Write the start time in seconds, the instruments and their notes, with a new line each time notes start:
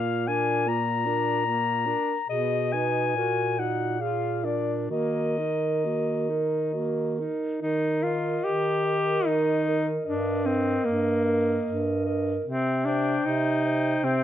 Already playing: bass clarinet A#2, tenor saxophone A#3, clarinet F4 F5
0.27 tenor saxophone D4, clarinet A#4 G#5
0.67 tenor saxophone A#3, clarinet F4 A#5
1.06 tenor saxophone D4, clarinet A#4
1.46 tenor saxophone A#3, clarinet F4
1.86 tenor saxophone D4, clarinet A#4
2.28 bass clarinet B2, tenor saxophone B3, clarinet G#4 D#5
2.72 tenor saxophone D#4, clarinet B4 G#5
3.15 bass clarinet A#2, tenor saxophone F#4, clarinet A#4
3.58 tenor saxophone D#4, clarinet F#4 F#5
3.99 tenor saxophone F4, clarinet G#4 F5
4.44 tenor saxophone D4, clarinet A#4 D5
4.89 bass clarinet D#3, tenor saxophone A#3, clarinet F#4 D#5
5.37 tenor saxophone D#4, clarinet A#4
5.84 tenor saxophone A#3, clarinet F#4
6.29 tenor saxophone D#4, clarinet A#4
6.73 tenor saxophone A#3, clarinet F#4
7.18 tenor saxophone D#4, clarinet A#4
7.62 bass clarinet D#3, tenor saxophone D#4
8.03 tenor saxophone F4, clarinet A#4 D#5
8.44 bass clarinet D#3, tenor saxophone G4
8.85 clarinet A#4 D#5
9.26 bass clarinet D#3, tenor saxophone D#4
9.64 clarinet A#4 D#5
10.05 bass clarinet G2, tenor saxophone D4, clarinet A#4 D#5
10.45 tenor saxophone C4, clarinet A#4 D#5
10.85 bass clarinet G2, tenor saxophone A#3
11.25 clarinet A#4 D#5
11.65 bass clarinet G2
12.05 clarinet A#4 D#5
12.44 bass clarinet C3, tenor saxophone C4
12.85 tenor saxophone D4, clarinet C5 G5
13.24 bass clarinet C3, tenor saxophone D#4
13.65 clarinet C5 G5
14.02 bass clarinet C3, tenor saxophone C4